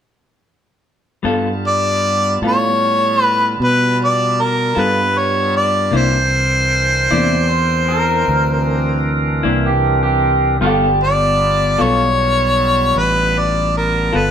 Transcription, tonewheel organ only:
1.25 G3 B3 F4 A5
5.91 E3 C4 D4 A#4
10.62 G3 B3 F4 A5

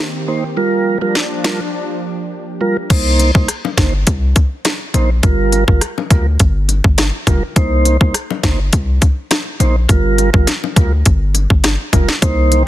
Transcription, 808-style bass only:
2.90 C2
3.35 C2
3.78 G1
4.07 C2
4.94 A#1
5.23 G1
5.68 G1
6.11 D2
6.40 G1
6.84 G1
7.27 F1
7.56 C2
8.01 C2
8.43 G1
8.73 C2
9.60 A#1
9.89 G1
10.34 G1
10.76 D2
11.06 G1
11.50 G1
11.93 F1
12.22 C2

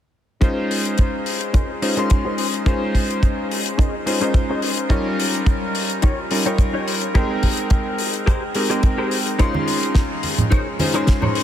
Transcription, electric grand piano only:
0.41 G#3 C#4 D#4 F4 C5
1.82 G#3 C#4 D#4 F4 C5
1.97 G#3 C#4 D#4 F4 C6
2.66 G#3 C#4 D#4 F4 C5
4.06 G#3 C#4 D#4 F4 C5
4.20 G#3 C#4 D#4 F4 C5
4.89 G3 C#4 D#4 F4 A#4
6.31 G3 C#4 D#4 F4 A#4
6.45 G3 C#4 D#4 F4 A#4
7.15 G#3 C4 D#4 A#4 G5
8.55 G#3 C4 D#4 G4 A#4
8.69 G#3 C4 D#4 A#4 G5
9.38 G#3 C#4 D#4 F4 C6
10.79 G#3 C#4 D#4 F4 C5
10.94 G#3 C#4 D#4 F4 C6

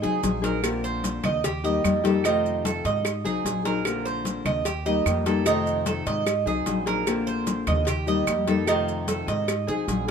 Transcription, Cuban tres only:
0.03 G#4
0.44 A#4
0.84 C5
1.25 D#5
1.44 G4
1.64 D#5
2.05 A4
2.25 D#4
2.65 A4
2.85 D#5
3.25 G#4
3.65 A#4
4.06 C5
4.46 D#5
4.66 G4
4.86 D#5
5.26 A4
5.46 D#4
5.87 A4
6.07 D#5
6.47 G#4
6.87 A#4
7.27 C5
7.67 D#5
7.88 G4
8.08 D#5
8.48 A4
8.68 D#4
9.08 A4
9.28 D#5
9.68 G#4

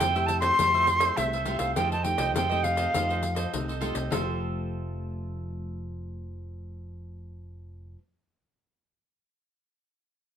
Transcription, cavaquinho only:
0.00 F4 A4 C5 E5
0.15 A4 C5 E5
0.41 A4 C5 E5
0.59 F4 A4 C5 E5
0.74 A4 C5 E5
0.87 muted cavaquinho stroke
1.00 A4 C5 E5
1.34 A4 C5 E5
1.46 F4 A4 C5 E5
1.59 A4 C5 E5
1.76 F4 A4 C5 D#5
1.92 A4 C5 D#5
2.04 muted cavaquinho stroke
2.17 A4 C5 D#5
2.35 F4 A4 C5 D#5
2.49 A4 C5 D#5
2.76 A4 C5 D#5
2.93 F4 A4 C5 D#5
3.09 A4 C5 D#5
3.22 muted cavaquinho stroke
3.35 A4 C5 D#5
3.68 A4 C5 D#5
3.81 F4 A4 C5 D#5
3.95 A4 C5 D#5
4.11 F4 A4 C5 E5

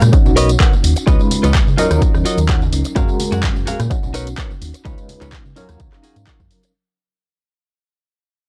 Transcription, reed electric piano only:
0.12 C#4 D#4 F#4
1.06 G#3 C#4 D#4 F4 B4
1.77 F#3 C#4 D#4 A#4
2.95 G#3 C#4 F#4 A#4
3.90 C#4 D#4 F#4
4.85 G#3 C#4 D#4 F4 B4
5.56 F#3 C#4 D#4 A#4 F5

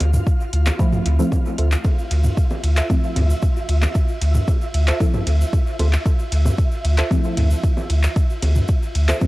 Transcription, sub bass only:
0.00 D2
0.53 D2
1.06 D2
1.58 D2
2.11 D2
2.63 D2
3.16 D2
3.69 D2
4.21 D2
4.74 D2
5.27 D2
5.79 D2
6.32 D2
6.85 D2
7.37 D2
7.90 D2
8.42 D2
8.95 D2

